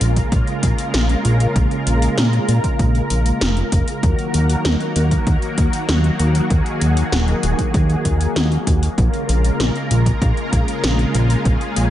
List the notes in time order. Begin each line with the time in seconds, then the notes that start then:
Already playing: C#3 G#3 A#3 F4 A#4
0.01 A#1, closed hi-hat
0.16 kick, closed hi-hat
0.32 A#1, kick, closed hi-hat
0.47 closed hi-hat
0.63 A#1, kick, closed hi-hat
0.78 closed hi-hat
0.94 A#1, snare, closed hi-hat
1.09 closed hi-hat
1.25 A#1, closed hi-hat
1.40 closed hi-hat
1.56 A#1, kick, closed hi-hat
1.71 closed hi-hat
1.87 A#1, closed hi-hat
2.02 closed hi-hat
2.18 A#2, snare, closed hi-hat
2.33 closed hi-hat
2.48 A#2, closed hi-hat
2.64 kick, closed hi-hat
2.79 A#1, kick, closed hi-hat
2.95 closed hi-hat
3.10 A#1, closed hi-hat
3.26 closed hi-hat
3.41 F1, snare, closed hi-hat
3.57 closed hi-hat
3.72 F1, kick, closed hi-hat
3.88 closed hi-hat
4.03 D#2 D#3 F#3 F#4, kick, closed hi-hat
4.19 closed hi-hat
4.34 D#2, closed hi-hat
4.50 closed hi-hat
4.65 D#2, snare, closed hi-hat
4.80 closed hi-hat
4.96 D#2, closed hi-hat
5.11 kick, closed hi-hat
5.27 D#2, kick, closed hi-hat
5.42 closed hi-hat
5.58 D#2, kick, closed hi-hat
5.73 closed hi-hat
5.89 D#2, snare, closed hi-hat
6.04 closed hi-hat
6.19 D#2, closed hi-hat
6.35 closed hi-hat
6.50 D#2 G#4, kick, closed hi-hat
6.66 closed hi-hat
6.81 D#2, closed hi-hat
6.97 closed hi-hat
7.12 D#1, snare, closed hi-hat
7.28 closed hi-hat
7.43 D#1, closed hi-hat
7.59 kick, closed hi-hat
7.74 D#2, kick, closed hi-hat
7.90 closed hi-hat
8.05 D#2, kick, closed hi-hat
8.21 closed hi-hat
8.36 D#2, snare, closed hi-hat
8.52 closed hi-hat
8.67 D#2, kick, closed hi-hat
8.83 closed hi-hat
8.98 A#1 C#3 G#3 F4 A#4, kick, closed hi-hat
9.14 closed hi-hat
9.29 A#1, closed hi-hat
9.45 closed hi-hat
9.60 A#1, snare, closed hi-hat
9.75 closed hi-hat
9.91 A#1, closed hi-hat
10.06 kick, closed hi-hat
10.22 A#1, kick, closed hi-hat
10.37 closed hi-hat
10.53 A#1, kick, closed hi-hat
10.68 closed hi-hat
10.84 A#1, snare, closed hi-hat
10.99 closed hi-hat
11.15 A#1, closed hi-hat
11.30 closed hi-hat
11.45 A#1 G#4, kick, closed hi-hat
11.61 closed hi-hat
11.76 A#1, closed hi-hat